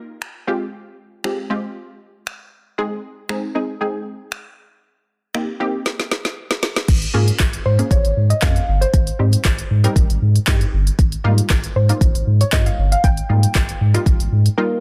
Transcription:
Already playing: synth pluck A#3 D#4 F4 A#4
0.22 finger snap
0.47 synth pluck G#3 C4 F4 G4
1.24 synth pluck G#3 C4 F4 G4, finger snap
1.50 synth pluck G#3 C4 F4 G4
2.27 finger snap
2.78 synth pluck G#3 C4 D#4 G#4
3.29 synth pluck G#3 C4 D#4 G#4, finger snap
3.55 synth pluck G#3 C4 D#4 G#4
3.81 synth pluck G#3 C4 D#4 G#4
4.32 finger snap
5.34 synth pluck A#3 C4 D#4 G4, finger snap
5.60 synth pluck A#3 C4 D#4 G4
5.86 snare
6.00 snare
6.12 snare
6.25 snare
6.51 snare
6.63 snare
6.76 snare
6.88 sub bass G#1, kick, closed hi-hat, crash
7.02 closed hi-hat
7.14 sub bass G#2, synth pluck A#3 C#4 F4 G#4
7.28 closed hi-hat
7.40 sub bass G#1, kick, snare, clap, closed hi-hat
7.53 closed hi-hat
7.65 sub bass G#2, synth pluck C5
7.79 synth pluck A#3 C#4 F4 G#4, closed hi-hat
7.91 sub bass G#1, synth pluck C#5, kick, closed hi-hat
8.05 sub bass G#1, closed hi-hat
8.17 sub bass G#2
8.30 synth pluck D#5, closed hi-hat
8.42 sub bass F2, synth pluck A#3 C#4 F4 G#4 F5, kick, snare, clap, closed hi-hat
8.56 closed hi-hat
8.68 sub bass G1
8.81 synth pluck C5, closed hi-hat
8.94 sub bass G#1, kick, closed hi-hat
9.07 closed hi-hat
9.19 sub bass G#2, synth pluck G3 C4 D#4 G4
9.33 closed hi-hat
9.45 sub bass G#1, kick, snare, clap, closed hi-hat
9.58 closed hi-hat
9.71 sub bass G#2
9.84 synth pluck G3 C4 D#4 A#4, closed hi-hat
9.96 sub bass G#1, kick, closed hi-hat
10.10 sub bass G#1, closed hi-hat
10.22 sub bass G#2
10.36 closed hi-hat
10.47 sub bass G2, synth pluck G3 C4 D#4 G4, kick, snare, clap, closed hi-hat
10.61 closed hi-hat
10.73 sub bass G1
10.87 closed hi-hat
10.99 sub bass G#1, kick, closed hi-hat
11.12 closed hi-hat
11.24 sub bass G#2, synth pluck G3 A#3 D#4 F4
11.38 closed hi-hat
11.50 sub bass G#1, kick, snare, clap, closed hi-hat
11.64 closed hi-hat
11.76 sub bass G#2, synth pluck C5
11.89 synth pluck G3 A#3 D#4 F4, closed hi-hat
12.01 sub bass G#1, kick, closed hi-hat
12.15 sub bass G#1, closed hi-hat
12.27 sub bass G#2
12.41 synth pluck C#5, closed hi-hat
12.52 sub bass G2, synth pluck G3 A#3 D#4 F4 D#5, kick, snare, clap, closed hi-hat
12.66 synth pluck F5, closed hi-hat
12.78 sub bass G1
12.92 synth pluck F5, closed hi-hat
13.04 sub bass G#1, synth pluck G5, kick, closed hi-hat
13.17 closed hi-hat
13.29 sub bass G#2, synth pluck G3 A#3 D#4 F4
13.43 closed hi-hat
13.55 sub bass G#1, kick, snare, clap, closed hi-hat
13.69 closed hi-hat
13.81 sub bass G#2
13.94 synth pluck G3 A#3 D#4 F4, closed hi-hat
14.06 sub bass G#1, kick, closed hi-hat
14.20 sub bass G#1, closed hi-hat
14.32 sub bass G#2
14.46 closed hi-hat
14.58 synth pluck G3 A#3 D#4 F4 A#4

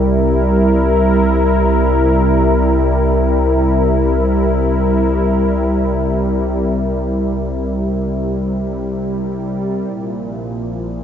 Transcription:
Already playing: sub bass C2, analog synth pad C3 G3 E4 A#4
9.89 sub bass A#1, analog synth pad A#2
10.19 analog synth pad F3

